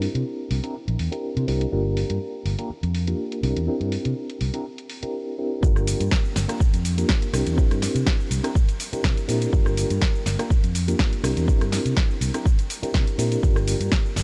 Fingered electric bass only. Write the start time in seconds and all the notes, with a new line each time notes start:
0.15 C3
0.51 C2
0.88 A#1
0.99 E2
1.37 C3
1.48 C2
1.73 G1
2.10 G2
2.45 G1
2.70 muted fingered electric bass stroke
2.83 F2
3.43 C2
3.56 E2
3.68 muted fingered electric bass stroke
3.80 G2
4.05 C3
4.41 C2
5.03 muted fingered electric bass stroke
5.63 G1
6.00 G2
6.36 G1
6.60 muted fingered electric bass stroke
6.73 F2
7.33 C2
7.46 E2
7.58 muted fingered electric bass stroke
7.71 G2
7.95 C3
8.31 C2
8.93 muted fingered electric bass stroke
9.04 C3
9.29 A#2
9.53 G1
9.90 G2
10.26 G1
10.50 muted fingered electric bass stroke
10.63 F2
11.24 C2
11.37 E2
11.48 muted fingered electric bass stroke
11.61 G2
11.85 C3
12.21 C2
12.83 muted fingered electric bass stroke
12.94 C3
13.18 A#2
13.43 G1
13.80 G2
14.16 G1